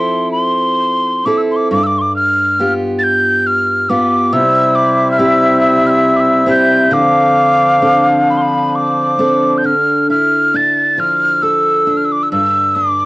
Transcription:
0.00 1.74 F3 medium
0.00 1.25 C4 soft
0.00 1.26 E4 soft
0.00 1.26 A4 medium
0.00 0.31 C6 medium
0.32 1.27 C6 medium
1.25 1.79 C4 soft
1.25 1.80 E4 medium
1.25 1.80 A4 medium
1.25 1.39 D6 medium
1.38 1.40 E6 soft
1.51 1.57 C6 soft
1.56 1.71 D6 medium
1.71 4.33 G2 medium
1.71 1.85 D6 medium
1.83 2.00 D6 medium
1.83 1.88 E6 medium
1.98 2.02 C6 medium
1.98 2.15 D6 medium
2.16 2.73 F6 loud
2.59 3.88 B3 soft
2.59 3.89 F4 soft
2.59 3.90 G4 medium
2.99 3.05 A6 medium
3.04 3.48 G6 loud
3.47 3.91 F6 medium
3.89 4.41 B3 medium
3.89 4.41 F4 medium
3.89 5.19 G4 medium
3.89 4.35 D6 medium
4.33 6.91 C3 medium
4.33 6.90 G3 medium
4.33 6.90 E4 medium
4.33 9.62 C5 medium
4.33 6.93 E5 loud
4.33 4.77 E6 loud
4.75 5.11 D6 medium
5.12 5.20 F6 medium
5.18 6.46 C4 medium
5.18 6.46 E4 medium
5.18 6.47 G4 medium
5.18 5.60 E6 medium
5.61 5.88 E6 loud
5.87 6.18 E6 medium
5.87 5.91 F6 medium
6.16 6.22 D6 medium
6.16 6.49 E6 medium
6.46 7.81 C4 medium
6.46 7.00 E4 medium
6.46 7.01 G4 medium
6.50 6.95 G6 medium
6.91 9.64 D3 medium
6.91 9.63 F3 medium
6.91 9.63 D4 medium
6.91 9.20 F5 loud
6.91 8.06 D6 medium
7.82 9.18 C4 soft
7.82 9.19 D4 medium
7.82 9.19 A4 medium
8.30 8.39 B5 medium
8.37 8.43 C6 medium
8.42 8.77 B5 medium
8.76 9.59 D6 medium
9.19 9.73 C4 soft
9.19 10.09 D4 soft
9.19 11.42 A4 medium
9.58 9.67 G6 medium
9.64 13.05 D3 medium
9.64 10.10 F6 medium
10.10 12.40 E4 soft
10.10 10.57 F6 medium
10.54 11.86 D4 soft
10.54 11.01 A6 medium
10.98 12.40 F3 medium
10.98 11.44 F6 medium
11.42 12.40 A4 medium
11.42 11.98 E6 medium
11.87 12.76 D4 soft
11.97 12.06 F6 medium
12.05 12.13 E6 medium
12.12 12.24 D6 medium
12.23 12.31 E6 medium
12.32 13.05 G2 medium
12.32 12.77 E6 medium
12.75 13.05 D4 soft
12.75 13.05 D6 medium

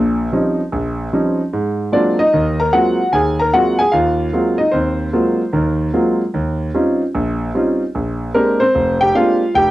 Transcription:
0.00 0.27 A#1 medium
0.00 0.27 A#2 medium
0.33 0.60 F3 soft
0.33 0.60 G3 soft
0.33 0.60 C4 soft
0.33 0.60 C#4 soft
0.33 0.60 D#4 medium
0.72 1.07 A#1 medium
1.13 1.40 F3 soft
1.13 1.40 G3 soft
1.13 1.40 C4 soft
1.13 1.40 C#4 soft
1.13 1.40 D#4 medium
1.53 1.87 G#2 medium
1.92 2.20 F#3 soft
1.92 2.20 G#3 soft
1.92 2.20 A#3 soft
1.92 2.20 C4 soft
1.92 2.17 D4 medium
1.92 2.20 F4 medium
1.92 2.17 D5 medium
2.19 2.57 D#4 medium
2.19 2.60 D#5 medium
2.33 2.68 D#2 medium
2.33 2.68 D#3 medium
2.60 2.73 A#4 medium
2.60 2.74 A#5 medium
2.73 3.00 F#3 soft
2.73 3.00 G#3 soft
2.73 3.00 A#3 soft
2.73 3.00 C4 soft
2.73 3.00 F4 medium
2.73 3.11 F#4 medium
2.73 3.14 F#5 medium
3.12 3.47 D#2 medium
3.12 3.38 G#4 medium
3.12 3.39 G#5 medium
3.39 3.53 A#4 medium
3.39 3.52 A#5 medium
3.53 3.80 F#3 soft
3.53 3.80 G#3 soft
3.53 3.80 A#3 soft
3.53 3.80 C4 soft
3.53 3.81 F4 medium
3.53 3.78 F#4 medium
3.53 3.80 F#5 medium
3.79 3.93 G#4 medium
3.79 3.93 G#5 medium
3.92 4.28 D#2 medium
3.92 4.33 F4 medium
3.92 4.54 F5 medium
4.33 4.60 F#3 medium
4.33 4.60 G#3 soft
4.33 4.60 A#3 soft
4.33 4.61 C4 soft
4.33 4.61 F4 medium
4.58 4.73 D#4 medium
4.58 4.73 D#5 medium
4.72 5.08 D#2 medium
4.72 5.12 C4 medium
4.72 5.89 C5 medium
5.13 5.40 F#3 medium
5.13 5.40 G#3 soft
5.13 5.41 A#3 soft
5.13 5.41 C4 soft
5.13 5.41 F4 medium
5.53 5.88 D#2 medium
5.53 5.88 D#3 medium
5.93 6.21 F#3 medium
5.93 6.21 G#3 soft
5.93 6.21 A#3 soft
5.93 6.21 C4 soft
5.93 6.21 F4 medium
6.34 6.68 D#2 medium
6.74 7.01 G3 medium
6.74 7.01 C4 soft
6.74 7.01 C#4 soft
6.74 7.01 D#4 soft
6.74 7.02 F4 medium
7.15 7.49 A#1 medium
7.55 7.81 G3 soft
7.55 7.82 C4 soft
7.55 7.82 C#4 soft
7.55 7.82 D#4 soft
7.55 7.82 F4 medium
7.95 8.29 A#1 medium
8.34 8.61 G#3 medium
8.34 8.61 A#3 soft
8.34 8.60 C4 soft
8.34 8.61 D4 soft
8.34 8.62 G4 medium
8.34 8.61 A#4 medium
8.60 8.98 C4 medium
8.60 8.97 C5 medium
8.75 9.09 F1 medium
9.01 9.14 G4 medium
9.01 9.15 G5 medium
9.15 9.42 G#3 soft
9.15 9.42 A#3 soft
9.15 9.42 C4 soft
9.15 9.42 D4 soft
9.15 9.53 F4 medium
9.15 9.42 G4 medium
9.15 9.56 F5 medium
9.55 9.71 F1 medium
9.55 9.71 G4 medium
9.55 9.71 G5 medium

